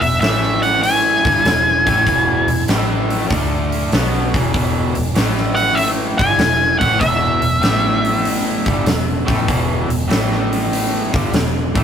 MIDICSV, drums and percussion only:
0, 0, Header, 1, 2, 480
1, 0, Start_track
1, 0, Key_signature, 4, "major"
1, 0, Tempo, 617920
1, 1603, Time_signature, 4, 2, 24, 8
1, 9194, End_track
2, 0, Start_track
2, 0, Title_t, "Drums"
2, 14, Note_on_c, 9, 46, 62
2, 91, Note_off_c, 9, 46, 0
2, 172, Note_on_c, 9, 46, 74
2, 179, Note_on_c, 9, 38, 91
2, 249, Note_off_c, 9, 46, 0
2, 256, Note_off_c, 9, 38, 0
2, 336, Note_on_c, 9, 38, 27
2, 413, Note_off_c, 9, 38, 0
2, 488, Note_on_c, 9, 46, 55
2, 566, Note_off_c, 9, 46, 0
2, 648, Note_on_c, 9, 46, 77
2, 726, Note_off_c, 9, 46, 0
2, 971, Note_on_c, 9, 36, 109
2, 974, Note_on_c, 9, 46, 57
2, 1049, Note_off_c, 9, 36, 0
2, 1051, Note_off_c, 9, 46, 0
2, 1129, Note_on_c, 9, 46, 67
2, 1136, Note_on_c, 9, 38, 103
2, 1207, Note_off_c, 9, 46, 0
2, 1214, Note_off_c, 9, 38, 0
2, 1450, Note_on_c, 9, 36, 103
2, 1454, Note_on_c, 9, 46, 56
2, 1528, Note_off_c, 9, 36, 0
2, 1532, Note_off_c, 9, 46, 0
2, 1605, Note_on_c, 9, 36, 94
2, 1607, Note_on_c, 9, 46, 69
2, 1683, Note_off_c, 9, 36, 0
2, 1685, Note_off_c, 9, 46, 0
2, 1927, Note_on_c, 9, 46, 55
2, 2005, Note_off_c, 9, 46, 0
2, 2084, Note_on_c, 9, 46, 67
2, 2091, Note_on_c, 9, 38, 101
2, 2161, Note_off_c, 9, 46, 0
2, 2168, Note_off_c, 9, 38, 0
2, 2411, Note_on_c, 9, 46, 53
2, 2489, Note_off_c, 9, 46, 0
2, 2567, Note_on_c, 9, 46, 71
2, 2568, Note_on_c, 9, 36, 101
2, 2645, Note_off_c, 9, 36, 0
2, 2645, Note_off_c, 9, 46, 0
2, 2892, Note_on_c, 9, 46, 57
2, 2970, Note_off_c, 9, 46, 0
2, 3048, Note_on_c, 9, 46, 71
2, 3055, Note_on_c, 9, 38, 94
2, 3126, Note_off_c, 9, 46, 0
2, 3133, Note_off_c, 9, 38, 0
2, 3373, Note_on_c, 9, 36, 100
2, 3376, Note_on_c, 9, 46, 57
2, 3450, Note_off_c, 9, 36, 0
2, 3453, Note_off_c, 9, 46, 0
2, 3528, Note_on_c, 9, 46, 70
2, 3529, Note_on_c, 9, 36, 97
2, 3605, Note_off_c, 9, 46, 0
2, 3607, Note_off_c, 9, 36, 0
2, 3847, Note_on_c, 9, 46, 57
2, 3924, Note_off_c, 9, 46, 0
2, 4004, Note_on_c, 9, 46, 69
2, 4011, Note_on_c, 9, 38, 96
2, 4082, Note_off_c, 9, 46, 0
2, 4089, Note_off_c, 9, 38, 0
2, 4173, Note_on_c, 9, 38, 30
2, 4251, Note_off_c, 9, 38, 0
2, 4324, Note_on_c, 9, 46, 58
2, 4402, Note_off_c, 9, 46, 0
2, 4484, Note_on_c, 9, 46, 74
2, 4562, Note_off_c, 9, 46, 0
2, 4809, Note_on_c, 9, 46, 58
2, 4811, Note_on_c, 9, 36, 105
2, 4887, Note_off_c, 9, 46, 0
2, 4889, Note_off_c, 9, 36, 0
2, 4962, Note_on_c, 9, 46, 77
2, 4969, Note_on_c, 9, 38, 109
2, 5039, Note_off_c, 9, 46, 0
2, 5046, Note_off_c, 9, 38, 0
2, 5290, Note_on_c, 9, 36, 98
2, 5291, Note_on_c, 9, 46, 57
2, 5368, Note_off_c, 9, 36, 0
2, 5369, Note_off_c, 9, 46, 0
2, 5444, Note_on_c, 9, 46, 78
2, 5445, Note_on_c, 9, 36, 98
2, 5521, Note_off_c, 9, 46, 0
2, 5523, Note_off_c, 9, 36, 0
2, 5764, Note_on_c, 9, 46, 53
2, 5842, Note_off_c, 9, 46, 0
2, 5926, Note_on_c, 9, 46, 68
2, 5933, Note_on_c, 9, 38, 98
2, 6003, Note_off_c, 9, 46, 0
2, 6010, Note_off_c, 9, 38, 0
2, 6251, Note_on_c, 9, 46, 53
2, 6329, Note_off_c, 9, 46, 0
2, 6410, Note_on_c, 9, 46, 70
2, 6488, Note_off_c, 9, 46, 0
2, 6727, Note_on_c, 9, 46, 55
2, 6728, Note_on_c, 9, 36, 103
2, 6804, Note_off_c, 9, 46, 0
2, 6806, Note_off_c, 9, 36, 0
2, 6885, Note_on_c, 9, 46, 67
2, 6892, Note_on_c, 9, 38, 101
2, 6963, Note_off_c, 9, 46, 0
2, 6970, Note_off_c, 9, 38, 0
2, 7211, Note_on_c, 9, 36, 109
2, 7215, Note_on_c, 9, 46, 52
2, 7288, Note_off_c, 9, 36, 0
2, 7293, Note_off_c, 9, 46, 0
2, 7367, Note_on_c, 9, 36, 104
2, 7369, Note_on_c, 9, 46, 69
2, 7445, Note_off_c, 9, 36, 0
2, 7446, Note_off_c, 9, 46, 0
2, 7692, Note_on_c, 9, 46, 54
2, 7770, Note_off_c, 9, 46, 0
2, 7849, Note_on_c, 9, 46, 71
2, 7856, Note_on_c, 9, 38, 99
2, 7927, Note_off_c, 9, 46, 0
2, 7934, Note_off_c, 9, 38, 0
2, 8017, Note_on_c, 9, 38, 30
2, 8095, Note_off_c, 9, 38, 0
2, 8178, Note_on_c, 9, 46, 59
2, 8256, Note_off_c, 9, 46, 0
2, 8336, Note_on_c, 9, 46, 79
2, 8413, Note_off_c, 9, 46, 0
2, 8653, Note_on_c, 9, 36, 110
2, 8654, Note_on_c, 9, 46, 59
2, 8731, Note_off_c, 9, 36, 0
2, 8732, Note_off_c, 9, 46, 0
2, 8805, Note_on_c, 9, 46, 70
2, 8812, Note_on_c, 9, 38, 103
2, 8883, Note_off_c, 9, 46, 0
2, 8890, Note_off_c, 9, 38, 0
2, 9130, Note_on_c, 9, 46, 62
2, 9131, Note_on_c, 9, 36, 102
2, 9194, Note_off_c, 9, 36, 0
2, 9194, Note_off_c, 9, 46, 0
2, 9194, End_track
0, 0, End_of_file